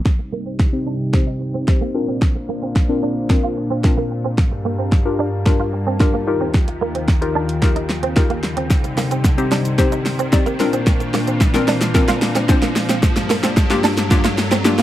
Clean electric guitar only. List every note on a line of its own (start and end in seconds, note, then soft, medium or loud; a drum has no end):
0.19 muted clean electric guitar stroke soft
0.32 0.42 A#3 medium
0.46 0.56 C4 medium
0.86 0.96 D4 medium
1.27 1.37 D#4 medium
1.41 muted clean electric guitar stroke soft
1.54 1.64 C4 medium
1.81 1.91 A#3 medium
1.95 muted clean electric guitar stroke soft
2.08 2.18 C4 medium
2.35 muted clean electric guitar stroke soft
2.49 2.58 A#3 medium
2.62 2.72 C4 medium
3.03 3.12 D4 medium
3.43 3.53 F4 medium
3.57 muted clean electric guitar stroke soft
3.71 3.80 C4 medium
3.97 4.07 A#3 medium
4.11 muted clean electric guitar stroke soft
4.25 4.34 C4 medium
4.52 muted clean electric guitar stroke soft
4.65 4.75 A#3 medium
4.79 4.88 C4 medium
5.19 5.29 D4 medium
5.60 5.69 F4 medium
5.73 muted clean electric guitar stroke soft
5.87 5.96 C4 medium
6.14 6.23 A#3 medium
6.27 muted clean electric guitar stroke soft
6.41 6.50 C4 medium
6.68 muted clean electric guitar stroke soft
6.81 6.91 A#3 medium
6.95 7.04 C4 medium
7.35 7.45 D4 medium
7.76 7.85 D#4 medium
7.89 muted clean electric guitar stroke soft
8.03 8.13 C4 medium
8.30 8.40 A#3 medium
8.43 muted clean electric guitar stroke soft
8.57 8.66 C4 medium
8.84 muted clean electric guitar stroke soft
8.97 9.07 A#3 medium
9.11 9.21 C4 medium
9.52 9.61 D4 medium
9.92 10.02 D#4 medium
10.06 muted clean electric guitar stroke soft
10.19 10.29 C4 medium
10.46 10.56 A#3 medium
10.60 muted clean electric guitar stroke soft
10.73 10.83 C4 medium
11.00 muted clean electric guitar stroke soft
11.14 11.23 A#3 medium
11.27 11.37 C4 medium
11.68 11.77 D4 medium
12.08 12.18 F4 medium
12.22 muted clean electric guitar stroke soft
12.35 12.45 C4 medium
12.62 12.72 A#3 medium
12.76 muted clean electric guitar stroke soft
12.89 12.99 C4 medium
13.16 muted clean electric guitar stroke soft
13.30 13.40 A#3 medium
13.43 13.53 C4 medium
13.84 13.94 D4 medium
14.25 14.34 F4 medium
14.38 muted clean electric guitar stroke soft
14.52 14.61 C4 medium
14.79 14.83 A#3 medium